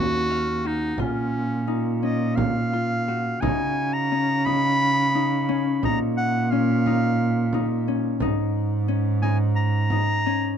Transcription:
0.00 1.00 D#2 medium
0.00 2.02 C#4 medium
0.00 1.67 D#4 medium
0.00 0.36 F#4 medium
0.00 0.68 F#4 loud
0.30 0.71 F5 medium
0.65 1.00 D#4 medium
0.65 1.05 F#4 medium
0.98 3.38 A#2 medium
0.98 1.99 C#4 medium
0.98 2.73 F4 medium
0.98 frame drum medium
1.33 frame drum soft
1.67 3.42 D#4 medium
2.02 4.11 C#4 medium
2.02 2.37 D#5 medium
2.02 frame drum soft
2.36 3.42 F5 medium
2.36 frame drum medium
2.73 3.14 F4 medium
3.08 5.52 F#4 medium
3.41 5.84 C#3 medium
3.41 4.46 D#4 medium
3.41 3.95 G#5 medium
3.41 frame drum medium
3.93 4.47 A#5 loud
4.12 5.48 C#4 medium
4.45 5.14 D#4 medium
4.45 5.82 B5 loud
4.45 frame drum soft
5.15 5.83 D#4 medium
5.49 6.52 C#4 medium
5.49 frame drum soft
5.83 8.23 A#2 medium
5.83 6.86 D#4 medium
5.83 6.00 A#5 medium
5.83 frame drum medium
6.17 6.52 F#5 medium
6.51 7.87 C#4 medium
6.51 7.87 F5 medium
6.86 7.53 D#4 medium
6.86 frame drum soft
7.53 8.21 D#4 medium
7.53 frame drum medium
7.87 8.88 C#4 medium
7.87 frame drum soft
8.20 10.58 G#2 medium
8.20 9.22 D#4 medium
8.20 frame drum medium
8.88 10.26 C#4 medium
9.22 9.91 D#4 medium
9.22 9.37 G#5 medium
9.22 frame drum soft
9.56 10.55 A#5 loud
9.90 10.58 D#4 medium
9.90 frame drum medium
10.25 10.58 C#4 medium
10.25 frame drum soft

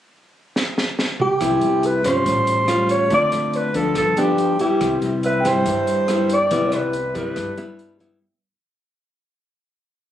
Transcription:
0.56 snare soft
0.78 snare soft
0.99 snare medium
1.20 1.88 G4 medium
1.20 mid tom medium
1.41 1.60 C2 medium
1.41 2.24 C3 soft
1.41 2.01 G3 medium
1.41 2.01 B3 medium
1.41 2.01 E4 medium
1.41 kick soft
1.41 cross-stick medium
1.41 closed hi-hat medium
1.61 2.02 C2 medium
1.61 closed hi-hat soft
1.83 2.08 B4 medium
1.83 closed hi-hat soft
2.04 2.24 G2 medium
2.04 2.65 G3 soft
2.04 2.65 C#4 medium
2.04 2.65 F4 medium
2.04 2.92 C5 loud
2.04 cross-stick medium
2.04 closed hi-hat soft
2.25 3.07 A1 medium
2.25 3.08 A2 soft
2.25 kick soft
2.25 closed hi-hat medium
2.47 closed hi-hat soft
2.68 3.07 G3 medium
2.68 3.07 C#4 soft
2.68 3.07 F4 medium
2.68 cross-stick medium
2.68 closed hi-hat soft
2.89 3.11 C#5 medium
2.89 closed hi-hat soft
3.10 3.30 D2 medium
3.10 3.93 D3 medium
3.10 3.71 A3 medium
3.10 3.71 C4 soft
3.10 3.71 F4 medium
3.10 3.58 D5 loud
3.10 kick medium
3.10 closed hi-hat soft
3.32 3.71 D2 medium
3.32 cross-stick soft
3.32 closed hi-hat soft
3.53 3.77 B4 medium
3.53 closed hi-hat soft
3.74 3.94 D2 medium
3.74 4.13 F3 medium
3.74 4.14 B3 medium
3.74 4.14 D4 medium
3.74 3.96 A4 medium
3.74 closed hi-hat soft
3.95 4.77 G1 medium
3.95 4.79 G2 soft
3.95 4.19 A4 medium
3.95 kick medium
3.95 cross-stick soft
3.95 closed hi-hat soft
4.17 4.56 F3 medium
4.17 4.57 B3 medium
4.17 4.57 D4 medium
4.17 4.60 G4 medium
4.17 closed hi-hat soft
4.38 closed hi-hat soft
4.59 5.42 G3 medium
4.59 5.42 B3 medium
4.59 5.42 E4 medium
4.59 4.99 G4 medium
4.59 closed hi-hat soft
4.81 5.01 C2 medium
4.81 5.64 C3 medium
4.81 kick medium
4.81 cross-stick medium
4.81 closed hi-hat soft
5.02 5.42 C2 medium
5.02 closed hi-hat soft
5.23 5.48 B4 medium
5.23 6.17 E5 soft
5.23 closed hi-hat soft
5.40 6.30 G5 soft
5.45 5.65 G2 medium
5.45 6.05 G3 medium
5.45 6.06 E4 medium
5.45 6.35 C5 loud
5.45 cross-stick medium
5.45 closed hi-hat soft
5.66 6.47 G2 medium
5.66 6.49 G2 medium
5.66 kick medium
5.66 closed hi-hat medium
5.87 closed hi-hat soft
6.08 6.36 G3 medium
6.08 6.36 B3 medium
6.08 6.37 E4 medium
6.08 cross-stick medium
6.08 closed hi-hat soft
6.30 closed hi-hat soft
6.34 6.76 D5 medium
6.51 6.71 C2 medium
6.51 7.34 C3 medium
6.51 6.94 G3 soft
6.51 6.94 B3 medium
6.51 6.94 E4 medium
6.51 7.44 B4 soft
6.51 kick medium
6.51 closed hi-hat medium
6.67 7.57 D5 soft
6.72 7.11 C2 medium
6.72 7.16 B4 medium
6.72 cross-stick medium
6.72 closed hi-hat soft
6.93 closed hi-hat soft
7.15 7.35 G2 medium
7.15 7.54 G3 medium
7.15 7.54 B3 medium
7.15 7.54 E4 medium
7.15 7.97 B4 medium
7.15 kick soft
7.15 closed hi-hat soft
7.36 8.19 G2 soft
7.36 8.18 G2 medium
7.36 kick medium
7.36 cross-stick medium
7.36 closed hi-hat medium
7.58 7.97 G3 medium
7.58 7.97 B3 medium
7.58 7.97 E4 medium
7.58 closed hi-hat soft
7.79 closed hi-hat soft
8.00 8.18 G3 medium
8.00 8.18 B3 medium
8.00 8.18 E4 medium
8.00 closed hi-hat soft

